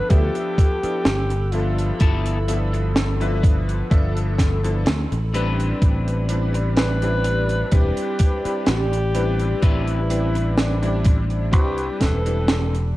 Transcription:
Already playing: ambient pad A4 B5 E6, alto saxophone B4
0.09 fingered electric bass D2, electric grand piano F3 B3 D4 A4 E5, alto saxophone G4, kick, closed hi-hat
0.35 closed hi-hat
0.58 kick, closed hi-hat
0.82 electric grand piano F3 B3 D4 E4 A4, muted fingered electric bass stroke, closed hi-hat
1.05 fingered electric bass G1, muted clean electric guitar stroke, snare, closed hi-hat
1.30 muted clean electric guitar stroke, closed hi-hat
1.52 electric grand piano F3 B3 D4 A4 E5, alto saxophone F4, closed hi-hat
1.78 muted clean electric guitar stroke, closed hi-hat
2.00 fingered electric bass G1, clean electric guitar B3 E4 F4 A4, alto saxophone E4, kick, closed hi-hat
2.26 closed hi-hat
2.48 electric grand piano F3 B3 D4 A4 E5, closed hi-hat
2.73 muted clean electric guitar stroke, closed hi-hat
2.96 muted clean electric guitar stroke, snare, closed hi-hat
3.21 electric grand piano F3 B3 D4 B4 E5, closed hi-hat
3.43 muted clean electric guitar stroke, kick, closed hi-hat
3.69 muted clean electric guitar stroke, closed hi-hat
3.90 fingered electric bass G1, electric grand piano F3 B3 D4 A4 E5, kick, closed hi-hat
4.17 closed hi-hat
4.38 kick, snare, closed hi-hat
4.63 electric grand piano F3 B3 D4 E4 A4, closed hi-hat
4.86 fingered electric bass D2, muted clean electric guitar stroke, snare, closed hi-hat
5.11 fingered electric bass A1, muted clean electric guitar stroke, closed hi-hat
5.34 electric grand piano G3 C4 D4 E4 B4, clean electric guitar C4 D4 G4 B4, ambient pad G4 D5 B5, closed hi-hat
5.60 closed hi-hat
5.82 fingered electric bass A1, kick, closed hi-hat
6.08 closed hi-hat
6.29 electric grand piano G3 C4 D4 E4 B4, closed hi-hat
6.54 muted clean electric guitar stroke, closed hi-hat
6.77 alto saxophone B4, muted clean electric guitar stroke, snare, closed hi-hat
7.02 electric grand piano G3 C4 D4 E4, closed hi-hat
7.24 muted clean electric guitar stroke, closed hi-hat
7.49 muted clean electric guitar stroke, closed hi-hat
7.72 fingered electric bass E1, electric grand piano G3 C4 D4 E4 B4, alto saxophone G4, kick, closed hi-hat
7.97 closed hi-hat
8.19 kick, closed hi-hat
8.44 electric grand piano G3 C4 D4 E4 B4, muted fingered electric bass stroke, closed hi-hat
8.66 fingered electric bass A1, alto saxophone G4, muted clean electric guitar stroke, snare, closed hi-hat
8.93 muted clean electric guitar stroke, closed hi-hat
9.14 electric grand piano G3 C4 D4 E4 B4, closed hi-hat
9.39 muted clean electric guitar stroke, closed hi-hat
9.62 fingered electric bass A1, clean electric guitar C4 D4 G4 B4, alto saxophone E4, kick, closed hi-hat
9.87 closed hi-hat
10.09 electric grand piano G3 C4 D4 E4 B4, closed hi-hat
10.35 muted clean electric guitar stroke, closed hi-hat
10.57 alto saxophone D4, muted clean electric guitar stroke, snare, closed hi-hat
10.82 electric grand piano G3 C4 D4 E4, closed hi-hat
11.04 muted clean electric guitar stroke, kick, closed hi-hat
11.30 muted clean electric guitar stroke, closed hi-hat
11.52 fingered electric bass C2, electric grand piano G3 C4 D4 E4 B4, alto saxophone G4, kick, closed hi-hat
11.78 closed hi-hat
12.01 fingered electric bass E1, alto saxophone A4, kick, snare, closed hi-hat
12.25 electric grand piano G3 C4 D4 E4 B4, closed hi-hat
12.48 muted clean electric guitar stroke, snare, closed hi-hat
12.73 muted clean electric guitar stroke, closed hi-hat

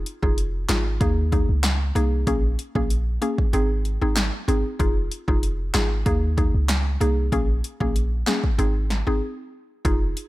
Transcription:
0.06 closed hi-hat
0.23 808-style bass F1, synth pluck D#4 F4 G#4, kick
0.38 closed hi-hat
0.69 808-style bass G#1, synth pluck D#4 F4 G#4, snare, clap, closed hi-hat
1.01 808-style bass D#2, synth pluck A#3 D#4 G#4, kick, closed hi-hat
1.32 synth pluck A#3 D#4 G#4, kick, closed hi-hat
1.49 808-style bass C#2
1.64 snare, clap, closed hi-hat
1.95 808-style bass C2, synth pluck A#3 D#4 G#4, closed hi-hat
2.27 808-style bass A#1, synth pluck A#3 C#4 G#4, kick, closed hi-hat
2.59 closed hi-hat
2.75 808-style bass A#1, synth pluck A#3 C#4 G#4, kick
2.90 closed hi-hat
3.22 synth pluck A#3 C#4 G#4, closed hi-hat
3.38 kick
3.53 808-style bass G#1, synth pluck C4 D#4 G#4, closed hi-hat
3.85 closed hi-hat
4.02 808-style bass G#1, synth pluck C4 D#4 G#4
4.16 snare, clap, closed hi-hat
4.48 808-style bass G#1, synth pluck C4 D#4 G#4, closed hi-hat
4.79 808-style bass F1, synth pluck D#4 F4 G#4, kick, closed hi-hat
5.11 closed hi-hat
5.28 808-style bass F1, synth pluck D#4 F4 G#4, kick
5.43 closed hi-hat
5.74 808-style bass G#1, synth pluck D#4 F4 G#4, snare, clap, closed hi-hat
6.06 808-style bass D#2, synth pluck A#3 D#4 G#4, kick, closed hi-hat
6.37 synth pluck A#3 D#4 G#4, kick, closed hi-hat
6.54 808-style bass C#2
6.69 snare, clap, closed hi-hat
7.01 808-style bass C2, synth pluck A#3 D#4 G#4, closed hi-hat
7.32 808-style bass A#1, synth pluck A#3 C#4 G#4, kick, closed hi-hat
7.64 closed hi-hat
7.80 808-style bass A#1, synth pluck A#3 C#4 G#4, kick
7.96 closed hi-hat
8.27 synth pluck A#3 C#4 G#4, snare, clap, closed hi-hat
8.44 kick
8.58 808-style bass G#1, synth pluck C4 D#4 G#4, closed hi-hat
8.90 snare, closed hi-hat
9.07 808-style bass G#1, synth pluck C4 D#4 G#4
9.85 808-style bass F1, synth pluck D#4 F4 G#4, kick, closed hi-hat
10.17 closed hi-hat

